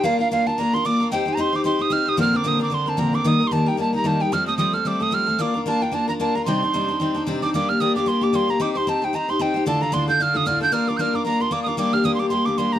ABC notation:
X:1
M:4/4
L:1/16
Q:"Swing" 1/4=224
K:Cdor
V:1 name="Tin whistle"
f2 f2 f2 a2 b2 c'2 d'4 | g3 b c'2 d'2 c'2 e'2 f'2 e'2 | f'2 d'2 e'2 d'2 c'2 a2 b2 d'2 | e'3 c' a2 g2 a2 b2 a2 g2 |
f'2 e'2 e'2 f'2 d'2 e'2 f'4 | d'3 z a2 g2 a2 b2 a2 b2 | c'12 z2 d'2 | d'2 f'2 e'2 d'2 c'2 d'2 c'2 b2 |
d'3/2 d'/2 c'2 a2 g2 b2 c'2 g4 | a2 b2 c'2 g'2 f'2 e'2 f'2 g'2 | f'2 d'3/2 g'/2 f'2 d'2 b2 c'2 d'3/2 e'/2 d'2 | d'2 f'2 e'3/2 c'/2 d'2 c'2 d'2 c'2 b2 |]
V:2 name="Steel-string acoustic guitar"
[B,DFB]2 [DFB]2 [B,DFB]2 [DFB]2 [B,DFB]2 [DFB]2 [B,DFB]2 [DFB]2 | [CEGc]2 [EGc]2 [CEGc]2 [EGc]2 [CEGc]2 [EGc]2 [CEGc]2 [EGc]2 | [B,,D,F,CDB]2 [D,CDB]2 [B,,D,F,CDB]2 [D,CDB]2 [D,CDB]2 [D,CDB]2 [B,,D,F,CDB]2 [D,CDB]2 | [E,G,B,EB]2 [G,EB]2 [E,G,B,EB]2 [G,EB]2 [G,B,EB]2 [G,EB]2 [E,G,B,EB]2 [G,EB]2 |
[F,G,A,CA]2 [A,CA]2 [F,G,A,CA]2 [A,CA]2 [G,A,CA]2 [A,CA]2 [F,G,A,CA]2 [A,CA]2 | [B,DFB]2 [DFB]2 [B,DFB]2 [DFB]2 [B,DFB]2 [DFB]2 [B,DFB]2 [DFB]2 | [C,G,CDE]2 [CDE]2 [C,G,CDE]2 [CDE]2 [G,CDE]2 [CDE]2 [C,G,CDE]2 [CDE]2 | [G,B,DG]2 [B,DG]2 [G,B,DG]2 [B,DG]2 [G,B,DG]2 [B,DG]2 [G,B,DG]2 [B,DG]2 |
[CEGc]2 [EGc]2 [CEGc]2 [EGc]2 [CEGc]2 [EGc]2 [CEGc]2 [EGc]2 | [D,,A,,D,DFA]2 [D,DFA]2 [D,,A,,D,DFA]2 [D,DFA]2 [D,DFA]2 [D,DFA]2 [D,,A,,D,DFA]2 [D,DFA]2 | [B,DFB]2 [DFB]2 [B,DFB]2 [DFB]2 [B,DFB]2 [DFB]2 [B,DFB]2 [DFB]2 | [G,B,DG]2 [B,DG]2 [G,B,DG]2 [B,DG]2 [G,B,DG]2 [B,DG]2 [G,B,DG]2 [B,DG]2 |]